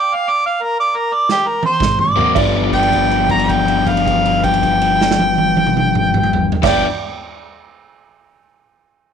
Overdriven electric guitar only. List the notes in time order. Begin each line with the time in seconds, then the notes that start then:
2.16 G#2 F#3 A#3 C4
2.35 G2 F3 B3
2.39 D4
6.62 G2 F3 B3 D4